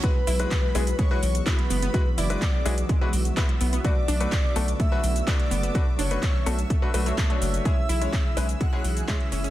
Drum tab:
HH |x-oxx-oxx-oxxxox|x-oxx-oxx-oxxxox|x-oxx-oxx-oxxxox|x-oxx-oxx-oxxxox|
SH |x-xxx-xxx-xxx-xx|x-xxx-xxx-xxx-xx|x-xxx-xxx-xxx-xx|x-xxx-xxx-xxx-xx|
CP |----x-------x---|----x-------x---|----x-------x---|----x-------x---|
BD |o---o---o---o---|o---o---o---o---|o---o---o---o---|o---o---o---o---|

HH |x-oxx-oxx-oxxxox|
SH |x-xxx-xxx-xxx-xx|
CP |----x-------x---|
BD |o---o---o---o---|